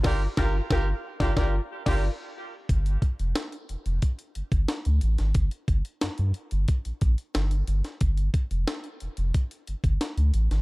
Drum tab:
CC |x----------x----|----------------|----------------|----------------|
HH |----------------|xxxxxxxxxxxxxxxx|xxxxxxxxxxxxxxxx|xxxxxxxxxxxxxxxx|
SD |o-o-o--oo--o----|----o-------o--o|----o-------o--o|----o-------o--o|
BD |o-o-o--oo--o----|o-o-----o--o----|o-o-----o-o-----|o-o-----o--o----|